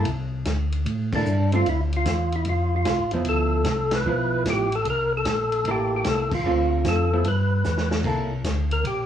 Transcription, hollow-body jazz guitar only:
1.15 A#3 E4 A4
1.53 D3 A3 C4 F4
3.14 F3 B3 E4
4.06 F3 B3 E4
5.67 A#3 E4 A4
6.46 D3 A3 C4 F4
7.13 F3 B3 E4
8.05 A#3 E4 A4

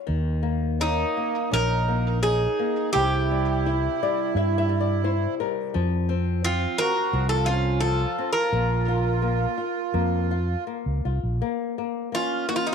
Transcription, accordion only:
0.82 A#3
1.51 D#4
2.21 D#4
2.93 E4
6.45 C4
6.80 F#4
7.31 F4
7.48 C#4
7.82 F4
8.35 F4
12.13 C#4
12.49 D#4
12.59 C#4
12.68 C4

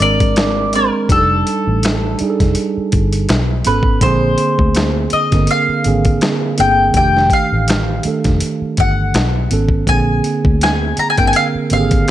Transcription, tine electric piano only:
Already playing: D4 A#4
0.00 G#3 C4 D4 A#4
0.75 G#3 C4 D4 A#4
1.09 G3 D4 D#4 G4
1.19 A4
2.20 G3 D4 D#4 G#4
2.30 A4
3.65 D#3 B3 C#4 A4
4.03 D3 A#3 C4 G#4
5.31 D3 A#3 C4 A#4
5.85 D3 A#3 C4 G#4
6.58 D3 A#3 C4 G#4
6.94 D#3 A3 D4 G4
8.04 D#3 A3 D4 A4
9.50 D#3 B3 C#4 A4
9.88 D3 A#3 C4 G#4
11.17 D3 A#3 C4 A#4
11.71 D3 A#3 C4 G4
11.80 G#4

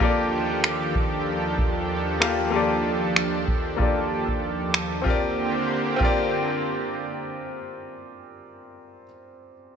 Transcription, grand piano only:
0.00 A#3 F4 G4 A4 D5
2.20 A#3 F4 G4 A4 F5
2.50 A#3 F4 G4
2.55 A4 D5
3.76 A#3 F4 G4
3.81 A4 D5
5.02 C4 F4
5.06 G4 A#4
5.10 D5
5.96 C4 F4
6.01 G4 A#4 D5

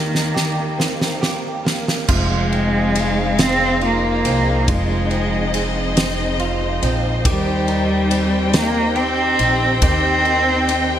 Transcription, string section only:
Already playing: D#2 D#3 G3 A#3
2.09 D#4 G#4 C5 F5
4.68 D#5
7.25 D#4 G4 G5

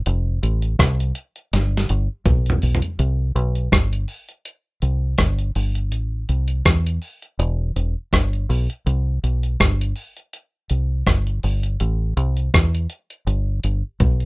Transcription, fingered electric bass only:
0.07 F1
0.43 A1
0.79 C2
1.53 G1
1.90 G1
2.26 B1
2.63 B1
2.99 C2
3.36 B1
3.73 G1
4.82 C2
5.19 G1
5.56 G1
5.92 A1
6.29 C2
6.66 E2
7.39 E1
7.76 E1
8.13 G1
8.50 B1
8.87 C2
9.24 B1
9.61 G1
10.71 C2
11.07 G1
11.44 G1
11.81 A1
12.17 C2
12.54 E2
13.27 G1
13.64 G1
14.01 B1

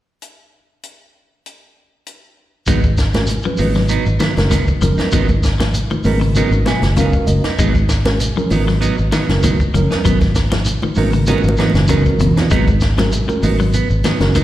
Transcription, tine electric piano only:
3.14 G#3 C#4 F#4 A#4
3.45 F#3 G#3 C#4 B4
4.37 G#3 C#4 F#4 A#4
4.81 F#3 G#3 C#4 A#4
6.05 G#3 C#4 F#4 A#4
6.35 G#3 C#4 F#4 A#4
6.67 G#5
6.96 G#3 C#4 F#4 A#4 F5
7.27 D#5
8.05 G#3 C#4 F#4 A#4
8.36 F#3 G#3 C#4 A#4
9.28 G#3 C#4 F#4 A#4
9.74 F#3 G#3 C#4 A#4
10.97 G#3 C#4 F#4 A#4
11.28 G#3 C#4 F#4 A#4
11.88 G#3 C#4 F#4 A#4
12.97 G#3 C#4 F#4 A#4
13.27 G#3 C#4 F#4 A#4
14.19 G#3 C#4 F#4 A#4

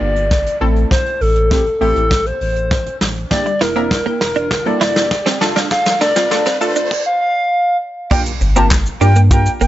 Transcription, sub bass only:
0.01 G1
0.61 A1
1.21 A1
1.81 A1
1.96 A1
2.41 A1
3.01 A1
3.61 E1
4.21 E1
4.36 E1
4.81 E1
5.41 F1
6.01 F1
6.61 F1
6.76 F1
8.41 G1
9.01 G2
9.61 G1

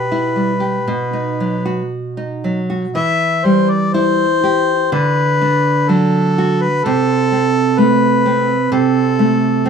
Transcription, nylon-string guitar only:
Already playing: B2 G4
0.12 E4
0.36 G3
0.60 G4
0.88 B2
1.13 D#4
1.40 F#3
1.65 F#4
2.17 D#4
2.44 F#3
2.70 F#4
2.95 E3
3.45 G3
3.94 E4
4.43 G4
4.92 D3
5.42 D4
5.89 F#3
6.38 F#4
6.86 C3
7.32 C4
7.78 A3
8.26 C4
8.72 C3
9.19 A3
9.65 C4

